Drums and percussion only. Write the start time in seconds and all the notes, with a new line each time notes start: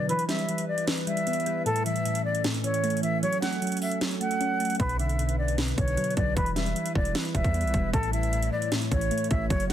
0.09 closed hi-hat
0.19 closed hi-hat
0.29 snare, closed hi-hat
0.39 closed hi-hat
0.49 closed hi-hat
0.58 closed hi-hat
0.78 closed hi-hat
0.87 snare, closed hi-hat
0.97 closed hi-hat
1.07 closed hi-hat
1.17 closed hi-hat
1.27 closed hi-hat
1.33 closed hi-hat
1.40 closed hi-hat
1.46 closed hi-hat
1.66 closed hi-hat
1.76 closed hi-hat
1.86 closed hi-hat
1.96 closed hi-hat
2.05 closed hi-hat
2.15 closed hi-hat
2.35 closed hi-hat
2.44 snare, closed hi-hat
2.54 closed hi-hat
2.64 closed hi-hat
2.74 closed hi-hat
2.84 closed hi-hat
2.90 closed hi-hat
2.97 closed hi-hat
3.03 closed hi-hat
3.23 closed hi-hat
3.32 closed hi-hat
3.42 snare, closed hi-hat
3.52 closed hi-hat
3.62 closed hi-hat
3.67 closed hi-hat
3.72 closed hi-hat
3.77 closed hi-hat
3.82 open hi-hat
3.91 closed hi-hat
4.01 snare, closed hi-hat
4.11 closed hi-hat
4.21 closed hi-hat
4.31 closed hi-hat
4.41 closed hi-hat
4.60 closed hi-hat
4.65 closed hi-hat
4.70 closed hi-hat
4.75 closed hi-hat
4.80 kick, closed hi-hat
4.89 closed hi-hat
4.99 closed hi-hat
5.09 closed hi-hat
5.19 closed hi-hat
5.29 closed hi-hat
5.48 closed hi-hat
5.58 snare, closed hi-hat
5.68 closed hi-hat
5.78 kick, closed hi-hat
5.88 closed hi-hat
5.97 closed hi-hat
6.04 closed hi-hat
6.10 closed hi-hat
6.17 kick, closed hi-hat
6.37 kick, closed hi-hat
6.46 closed hi-hat
6.56 snare, closed hi-hat
6.66 closed hi-hat
6.76 closed hi-hat
6.86 closed hi-hat
6.95 kick
7.05 closed hi-hat
7.15 snare, closed hi-hat
7.25 closed hi-hat
7.35 kick, closed hi-hat
7.44 kick, closed hi-hat
7.54 closed hi-hat
7.61 closed hi-hat
7.67 closed hi-hat
7.74 kick, closed hi-hat
7.93 kick, closed hi-hat
8.03 closed hi-hat
8.13 closed hi-hat
8.23 closed hi-hat
8.33 closed hi-hat
8.42 closed hi-hat
8.62 closed hi-hat
8.72 snare, closed hi-hat
8.82 closed hi-hat
8.91 kick, closed hi-hat
9.01 closed hi-hat
9.11 closed hi-hat
9.18 closed hi-hat
9.24 closed hi-hat
9.31 kick, closed hi-hat
9.50 kick, closed hi-hat
9.60 closed hi-hat